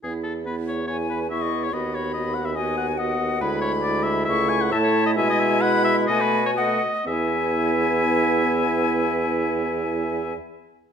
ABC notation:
X:1
M:4/4
L:1/16
Q:1/4=134
K:E
V:1 name="Flute"
z8 g4 c'4 | b8 g4 f4 | b8 c'4 a4 | g4 b4 g4 f2 z2 |
g16- | g16 |]
V:2 name="Oboe"
G2 A2 B2 c2 c2 B2 e d2 c | d2 c2 d2 f e d2 f2 d4 | B2 c2 =d2 e2 e2 g f e c2 ^d | e d e2 f2 e2 d B2 c d4 |
e16- | e16 |]
V:3 name="Clarinet"
E4 E8 E4 | F4 F4 F4 F4 | E4 E4 E4 E4 | E8 F4 F2 z2 |
E16- | E16 |]
V:4 name="French horn"
B,4 B,8 B,4 | B,4 B,4 B,4 B,4 | G,4 G,4 A,4 A,4 | G,8 A,4 A,2 z2 |
B,16- | B,16 |]
V:5 name="Bassoon" clef=bass
E,,16 | D,,16 | =D,,8 C,,4 A,,4 | B,,8 B,,6 z2 |
E,,16- | E,,16 |]